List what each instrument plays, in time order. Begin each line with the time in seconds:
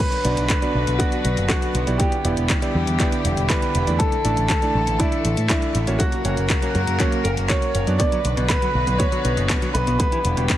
0.00 string section D3 F#3 B3 F#4 B4, grand piano B4
0.12 closed hi-hat
0.25 picked electric bass B1, electric grand piano B3 D4 F#4 D5, closed hi-hat
0.37 picked electric bass B1, closed hi-hat
0.49 grand piano B4, kick, clap, closed hi-hat
0.62 electric grand piano B3 D4 F#4 D5, closed hi-hat
0.75 picked electric bass B1
0.87 picked electric bass B1, closed hi-hat
0.99 electric grand piano B3 D4 F#4 D5, grand piano F#4, kick, closed hi-hat
1.12 closed hi-hat
1.25 picked electric bass B1, closed hi-hat
1.37 picked electric bass F#1, closed hi-hat
1.49 electric grand piano B3 D4 F#4 D5, grand piano F#4, kick, clap, closed hi-hat
1.62 closed hi-hat
1.75 picked electric bass B1, closed hi-hat
1.87 picked electric bass B1, electric grand piano B3 E4 G4 D5, closed hi-hat
1.98 string section D3 G3 E4 G4, grand piano G4, kick, closed hi-hat
2.12 closed hi-hat
2.25 picked electric bass E1, electric grand piano B3 E4 G4 D5, closed hi-hat
2.37 picked electric bass E1, closed hi-hat
2.50 kick, clap, closed hi-hat
2.62 electric grand piano B3 E4 G4 D5, closed hi-hat
2.75 picked electric bass E2
2.87 picked electric bass E2, closed hi-hat
3.00 electric grand piano B3 E4 G4 D5, kick, clap, closed hi-hat
3.12 closed hi-hat
3.25 picked electric bass E1, closed hi-hat
3.37 picked electric bass E1, closed hi-hat
3.48 electric grand piano B3 E4 G4 D5, grand piano B4, kick, clap, closed hi-hat
3.62 closed hi-hat
3.75 picked electric bass E1, closed hi-hat
3.87 picked electric bass E2, electric grand piano A3 D4 E4 D5, closed hi-hat
3.99 string section E3 A3 A4, grand piano A4, kick, closed hi-hat
4.12 closed hi-hat
4.25 picked electric bass A1, electric grand piano A3 D4 E4 D5, closed hi-hat
4.37 picked electric bass A1, closed hi-hat
4.48 grand piano A4, kick, clap, closed hi-hat
4.62 electric grand piano A3 D4 E4 D5, closed hi-hat
4.75 picked electric bass A1
4.87 picked electric bass A1, closed hi-hat
4.99 electric grand piano A3 D4 E4 D5, grand piano E4, kick, closed hi-hat
5.12 closed hi-hat
5.25 picked electric bass A1, closed hi-hat
5.37 picked electric bass A2, closed hi-hat
5.49 electric grand piano A3 D4 E4 D5, grand piano E4, kick, clap, closed hi-hat
5.62 closed hi-hat
5.75 picked electric bass A1, closed hi-hat
5.87 picked electric bass A1, electric grand piano A#3 C#4 F#4 C#5, closed hi-hat
5.99 string section C#3 F#3 A#3 F#4 A#4, grand piano F#4, kick, closed hi-hat
6.12 closed hi-hat
6.25 picked electric bass F#1, electric grand piano A#3 C#4 F#4 C#5, closed hi-hat
6.37 picked electric bass F#1, closed hi-hat
6.50 kick, clap, closed hi-hat
6.62 electric grand piano A#3 C#4 F#4 C#5, closed hi-hat
6.75 picked electric bass F#2, closed hi-hat
6.87 picked electric bass F#2, closed hi-hat
7.00 electric grand piano A#3 C#4 F#4 C#5, kick, clap, closed hi-hat
7.12 closed hi-hat
7.24 picked electric bass F#1, grand piano A#4, closed hi-hat
7.37 picked electric bass F#1, closed hi-hat
7.49 electric grand piano A#3 C#4 F#4 C#5, grand piano C#5, kick, clap, closed hi-hat
7.62 closed hi-hat
7.75 picked electric bass F#1, closed hi-hat
7.87 picked electric bass F#2, electric grand piano B3 D4 F#4 D5, closed hi-hat
7.99 clean electric guitar B2, string section D3 F#3 B3 F#4 B4, grand piano D5, kick, closed hi-hat
8.12 clean electric guitar F#3, closed hi-hat
8.25 picked electric bass B1, closed hi-hat
8.37 picked electric bass B1, clean electric guitar B2, closed hi-hat
8.49 clean electric guitar B2, grand piano B4, kick, clap, closed hi-hat
8.62 clean electric guitar F#3, closed hi-hat
8.75 picked electric bass B1
8.87 picked electric bass B1, clean electric guitar B2, closed hi-hat
8.98 clean electric guitar B2, grand piano C#5, kick, closed hi-hat
9.12 clean electric guitar F#3, closed hi-hat
9.25 picked electric bass B1, closed hi-hat
9.37 picked electric bass F#1, clean electric guitar B2, closed hi-hat
9.50 clean electric guitar B2, kick, clap, closed hi-hat
9.62 clean electric guitar F#3, closed hi-hat
9.74 picked electric bass B1, grand piano B4, closed hi-hat
9.87 picked electric bass B1, clean electric guitar B2, closed hi-hat
9.99 clean electric guitar B2, string section D3 G3 E4 G4, grand piano B4, kick, closed hi-hat
10.12 clean electric guitar E3, closed hi-hat
10.25 picked electric bass E1, closed hi-hat
10.37 picked electric bass E1, clean electric guitar B2, closed hi-hat
10.50 clean electric guitar B2, kick, clap, closed hi-hat